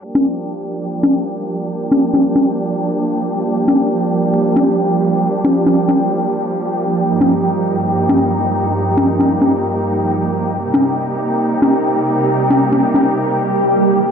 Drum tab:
CG |-o-------o------|-o-o-o----------|-o-------o------|-o-o-o----------|

CG |-o-------o------|-o-o-o----------|-o-------o------|-o-o-o----------|